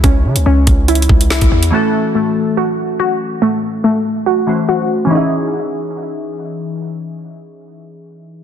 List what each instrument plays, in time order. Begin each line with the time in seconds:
Already playing: synth keys E3 G#3 C#4 D#4 G#4, synth pluck E4
0.04 808-style bass C#2, synth pluck C#4, kick, closed hi-hat
0.25 808-style bass C#3
0.36 808-style bass C#2, closed hi-hat
0.46 808-style bass C#2, synth pluck C#4
0.67 808-style bass C#2, kick, closed hi-hat
0.88 synth pluck E4, closed hi-hat
0.95 closed hi-hat
1.02 closed hi-hat
1.09 808-style bass C#2, kick
1.21 closed hi-hat
1.30 808-style bass C2, synth pluck E4, snare
1.41 808-style bass C#2, kick, closed hi-hat
1.52 808-style bass E2
1.63 closed hi-hat
1.71 synth keys E3 A3 C#4 F#4, synth pluck A3
1.75 synth keys A4
2.15 synth pluck A3
2.57 synth pluck F#4
3.00 synth pluck F#4
3.42 synth pluck A3
3.84 synth pluck A3
4.26 synth pluck F#4
4.47 synth keys E3 A3 C#4 F#4 C5
4.68 synth pluck F#4
5.05 synth keys E3, synth pluck C#4
5.09 synth keys C#4 D#4, synth pluck D#4
5.15 synth pluck E4, synth keys G#4